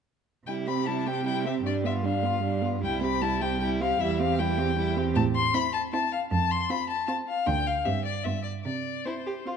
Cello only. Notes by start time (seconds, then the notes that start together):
0.47 C3
1.66 G2
2.83 C2
4.00 E2
5.16 A2
6.31 F2
7.47 D2
7.86 G2
8.25 G2
8.65 C3